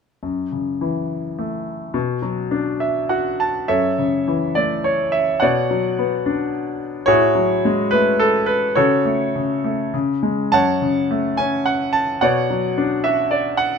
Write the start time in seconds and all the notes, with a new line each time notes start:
0.23 F#2
0.52 C#3
0.81 E3
1.39 A3
1.94 B2
2.22 F#3
2.51 D4
2.80 E5
3.09 F#4 F#5
3.40 A5
3.68 F#2 A4 C#5 E5
3.98 C#3
4.28 E3
4.55 A3 D5
4.84 C#5
5.12 E5
5.40 B2 C#5 D5 F#5
5.71 F#3
5.98 B3
6.26 D4
7.06 A2 F#4 G#4 C#5
7.35 F#3
7.65 G#3
7.91 A3 B4
8.19 A4
8.46 B4
8.75 C#3 F#4 A4 C#5
9.05 A3
9.35 C#3
9.64 A3
9.94 C#3
10.23 G#3
10.52 F#2 C#5 F#5 A5
10.82 C#3
11.11 A3
11.37 C#4 G#5
11.66 F#5
11.93 A5
12.21 B2 C#5 D5 F#5
12.50 F#3
12.78 D4
13.04 F#4 E5
13.31 D5
13.57 F#5